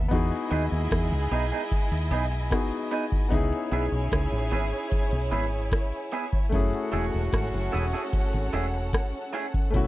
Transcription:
0.08 E2 G#3 B3 D#4 E4 F#4 G#4 D#5 G#5, kick, closed hi-hat
0.14 G#4
0.32 closed hi-hat
0.51 D#2 B3 D#4 G#4, closed hi-hat
0.72 D#2
0.91 E2, kick, cross-stick, closed hi-hat
1.12 C#2, closed hi-hat
1.31 B1 B3 D#4 G#4, closed hi-hat
1.52 B3 D#4 G#4
1.72 kick, closed hi-hat
1.92 D#2, closed hi-hat
2.11 B1 B3 D#4 G#4, closed hi-hat
2.32 muted clean electric guitar stroke, closed hi-hat
2.50 B3 D#4 F#4 G#4, kick, cross-stick, closed hi-hat
2.72 closed hi-hat
2.91 B3 D#4 G#4, open hi-hat
3.12 kick, closed hi-hat
3.29 C#2 B3 C#4 D#4 E4 G#4 C#5 G#5, kick, closed hi-hat
3.34 G#4
3.53 closed hi-hat
3.72 B1 B3 E4 G#4, closed hi-hat
3.92 B1
4.12 C#2, kick, cross-stick, closed hi-hat
4.32 A1, closed hi-hat
4.51 G#1 B3 E4 G#4, closed hi-hat
4.92 kick, closed hi-hat
5.11 B1, closed hi-hat
5.32 G#1 B3 E4 G#4, closed hi-hat
5.52 closed hi-hat
5.72 kick, cross-stick, closed hi-hat
5.92 closed hi-hat
6.12 B3 E4 G#4, open hi-hat
6.32 kick, closed hi-hat
6.49 F#1 A3 C#4 F#4 A4 F#5, kick, closed hi-hat
6.54 E4 G#4
6.73 closed hi-hat
6.92 E1 A3 E4 G#4, closed hi-hat
7.14 E1
7.33 G#1, kick, cross-stick, closed hi-hat
7.54 F#1, closed hi-hat
7.72 E1 A3 E4 G#4, closed hi-hat
7.93 A3 E4 G#4
8.13 kick, closed hi-hat
8.33 G#1, closed hi-hat
8.53 E1 A3 E4 G#4, closed hi-hat
8.74 muted clean electric guitar stroke, closed hi-hat
8.93 kick, cross-stick, closed hi-hat
9.14 closed hi-hat
9.33 A3 E4 G#4, open hi-hat
9.54 kick, closed hi-hat
9.70 B1 A3 B3 C#4 E4 A4 E5, kick, closed hi-hat
9.74 E4 F#4

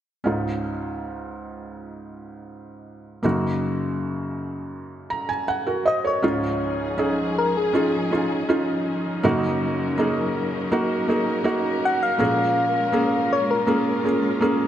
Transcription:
0.24 C#2 G#2 C#4 D#4 F4
3.23 F#2 C#3 A#3 D#4 F#4
5.10 A#5
5.29 G#5
5.48 F#5
5.67 F#4 A#4
5.86 C5 D#5
6.05 A#4 C#5
6.22 C#2 G#2 F3 C#4 D#4 F4 G#4
6.98 C#4 D#4 G#4
7.38 A#4
7.57 G#4
7.73 C#4 D#4 F4
8.11 C#4 D#4 F4
8.49 C#4 D#4 F4
9.23 F#2 C#3 F#3 A#3 D#4 F#4 A#4
9.98 A#3 D#4 G#4
10.72 A#3 D#4 F#4
11.08 A#3 D#4 G#4
11.44 A#3 D#4 F#4
11.85 F#5
12.03 F5
12.18 A#2 F3 G#3 A#3 C#4 F4 G#4
12.92 A#3 C#4 G#4
13.33 C#5
13.51 A#4
13.67 A#3 C#4 G#4
14.04 A#3 C#4 G#4
14.41 A#3 C#4 G#4

